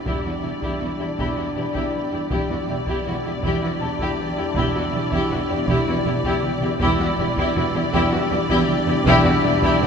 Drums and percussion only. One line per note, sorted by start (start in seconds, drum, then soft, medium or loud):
0.06 taiko medium
0.62 taiko medium
1.19 taiko medium
1.75 taiko medium
2.30 taiko medium
2.87 taiko medium
3.43 taiko medium
3.99 taiko medium
4.55 taiko medium
5.12 taiko medium
5.68 taiko medium
6.24 taiko medium
6.43 taiko mid medium
6.61 taiko mid soft
6.80 taiko medium
7.36 taiko medium
7.93 taiko medium
8.49 taiko medium
8.68 taiko mid medium
8.87 taiko mid soft
9.06 taiko loud
9.62 taiko medium